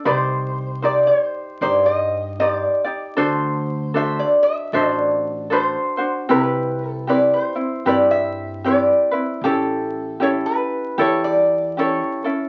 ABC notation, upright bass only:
X:1
M:4/4
L:1/8
Q:"Swing" 1/4=77
K:Clyd
V:1 name="Upright bass" clef=bass
C,,4 G,,4 | D,,4 A,,,4 | C,,4 G,,4 | A,,,4 E,,4 |]